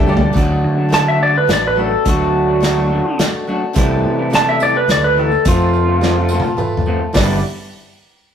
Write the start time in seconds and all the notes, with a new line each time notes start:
Already playing: D4 G4 A4 C5
0.05 D2 G3 A3 D4 G4 A4, tambourine
0.09 G4 D5
0.17 floor tom
0.33 D2 D3 F#3 A3 D4 F#4 A4, kick, closed hi-hat
0.37 F#4
0.64 D3
0.77 A3 D4 F#4
0.89 D3 F#3 A3 D4 F#4 A4, closed hi-hat
0.93 D4 F#4 A5, snare
1.06 A3 D4 F#4 E5
1.20 F#3 A3 D4 F#4 D5
1.34 B4, muted clean electric guitar stroke
1.47 A1 A3 D4 F#4 A4, snare, closed hi-hat
1.53 D5
1.67 B4
1.76 F#3 A3 D4 F#4 A4
1.81 A4
1.91 muted clean electric guitar stroke
2.05 D2 D3 F#3 A3 D4 F#4 A4, kick, closed hi-hat
2.48 A3 D4 F#4
2.60 D3 F#3 A3 D4 F#4 A4, snare, closed hi-hat
2.65 F#4
2.77 A3 D4 F#4
2.91 F#3 A3 D4 F#4
3.06 muted clean electric guitar stroke
3.19 A3 D4 F#4 A4, snare, closed hi-hat
3.47 F#3 A3 D4 F#4 A4
3.63 muted clean electric guitar stroke
3.73 C2 C3 E3 G3 A3 C4 E4 A4 C5, kick, closed hi-hat, tambourine
3.78 E4 G4
4.05 C3
4.18 A3 E4 G4
4.30 C3 E3 G3 A3 C4 E4 A4 C5, snare, closed hi-hat
4.34 E4 G4 A5
4.47 A3 E4 G4 E5, tambourine
4.59 E3 G3 A3 C4 E4 G4 A4 D5, tambourine
4.76 B4, muted clean electric guitar stroke
4.87 D2 G3 C4 E4 A4 C5, snare, closed hi-hat
4.91 D5
5.04 B4
5.17 E3 G3 A3 C4 E4 G4 A4
5.32 muted clean electric guitar stroke, tambourine
5.45 F2 C3 F3 A3 C4 F4 A4 C5, kick, closed hi-hat, tambourine
5.60 tambourine
5.73 tambourine
5.88 F3 A3 C4 F4
6.01 F2 C3 F3 A3 C4 F4 A4 C5, snare, tambourine
6.17 F3 A3 C4 F4
6.29 F3 C4 F4 A4, tambourine
6.33 A3 C4 F4
6.40 high tom, tambourine
6.46 muted clean electric guitar stroke
6.57 A3 C4 F4 A4 B4, mid tom, tambourine
6.77 mid tom
6.86 F3 A3 C4 F4, tambourine
7.01 muted clean electric guitar stroke
7.13 G1 G2 D3 E3 G3 B3 D4 E4 G4 B4 D5, kick, snare, open hi-hat, tambourine